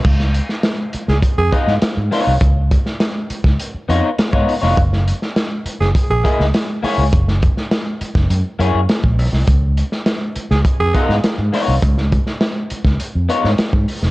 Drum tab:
CC |x---------------|----------------|----------------|----------------|
HH |--x-x-x-x-x-x-o-|x-x-x-x-x-x-x-o-|x-x-x-x-x-x-x-o-|x-x-x-x-x-x-x-o-|
SD |-o-oo--o---oo-o-|---oo--o----o--o|-o-oo--o---oo-o-|-o-oo--o----o--o|
BD |o-------o-o-----|o-o----o-----o--|o-------o-o-----|o-o----o-----o--|

CC |----------------|----------------|
HH |x-x-x-x-x-x-x-o-|x-x-x-x-x-x-x-o-|
SD |---oo--o---oo-o-|-o-oo--o---oo--o|
BD |o-------o-o-----|o-o----o-----o--|